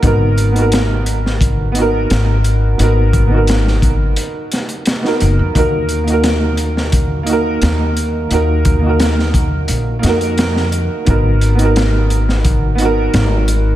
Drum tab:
HH |x-xxx-x-x-x-x-x-|x-x-x-x-x-xxx-x-|x-xxx-x-x-x-x-x-|x-x-x-x-x-xxx-x-|
SD |----o--o----o---|----oo----o-oo--|----o--o----o---|----oo----o-oo--|
BD |o-------o-------|--o---o---------|o-------o-------|--o---o---------|

HH |x-xxx-x-x-x-x-x-|
SD |----o--o----o---|
BD |o-------o-------|